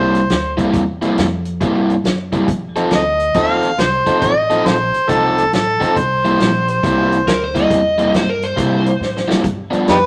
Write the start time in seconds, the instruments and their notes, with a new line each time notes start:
Already playing: upright bass C2, overdriven electric guitar C3 G3 A#3 E4, harmonica C5
0.15 closed hi-hat
0.30 upright bass D2, snare, closed hi-hat
0.57 overdriven electric guitar C3 G3 A#3 E4, kick, closed hi-hat
0.74 upright bass E2, kick, closed hi-hat
1.02 overdriven electric guitar C3 G3 A#3 E4, closed hi-hat
1.18 upright bass F2, snare, closed hi-hat
1.45 closed hi-hat
1.61 upright bass G2, overdriven electric guitar C3 G3 A#3 E4, kick, closed hi-hat
1.90 closed hi-hat
2.04 upright bass F#2, snare, closed hi-hat
2.32 overdriven electric guitar C3 G3 A#3 E4, kick, closed hi-hat
2.48 upright bass F2, kick, closed hi-hat
2.76 overdriven electric guitar F3 C4 D#4 A4, closed hi-hat
2.91 upright bass D2, snare, closed hi-hat
2.95 harmonica D#5
3.20 closed hi-hat
3.34 upright bass D#2, overdriven electric guitar F3 C4 D#4 A4, harmonica F5, kick, closed hi-hat
3.63 closed hi-hat
3.78 upright bass C2, harmonica C5, snare, closed hi-hat
4.06 overdriven electric guitar F3 C4 D#4 A4, muted upright bass stroke, kick, closed hi-hat
4.22 upright bass A1, harmonica D#5, kick, closed hi-hat
4.50 overdriven electric guitar F3 C4 D#4 A4, closed hi-hat
4.66 upright bass A#1, harmonica C5, snare, closed hi-hat
4.94 muted upright bass stroke, closed hi-hat
5.08 upright bass C2, overdriven electric guitar F3 C4 D#4 A4, harmonica A4, kick, closed hi-hat
5.38 closed hi-hat
5.53 upright bass A1, harmonica A4, snare, closed hi-hat
5.80 overdriven electric guitar F3 C4 D#4 A4, muted upright bass stroke, kick, snare, closed hi-hat
5.96 upright bass C2, harmonica C5, kick, closed hi-hat
6.25 overdriven electric guitar C3 G3 A#3 E4, closed hi-hat
6.40 upright bass A#1, snare, closed hi-hat
6.68 harmonica C5, closed hi-hat
6.83 upright bass C2, overdriven electric guitar C3 G3 A#3 E4, kick, closed hi-hat
7.12 closed hi-hat
7.27 upright bass D2, electric slide guitar A#4, snare, closed hi-hat
7.44 electric slide guitar C5
7.55 overdriven electric guitar C3 G3 A#3 E4, electric slide guitar D#5, kick, closed hi-hat
7.70 upright bass E2, kick, closed hi-hat
7.98 overdriven electric guitar C3 G3 A#3 E4, closed hi-hat
8.14 upright bass G2, electric slide guitar C5, snare, closed hi-hat
8.30 electric slide guitar A#4
8.42 electric slide guitar C5, closed hi-hat
8.57 overdriven electric guitar C3 G3 A#3 E4, upright bass C3, kick, closed hi-hat
8.86 closed hi-hat
9.00 upright bass A2, snare
9.17 snare
9.28 overdriven electric guitar C3 G3 A#3 E4, muted upright bass stroke, snare
9.44 upright bass G2, kick, closed hi-hat
9.71 overdriven electric guitar G2 F3 B3 D4, muted upright bass stroke, closed hi-hat
9.87 upright bass F2, harmonica D#4 G4 B4, snare, closed hi-hat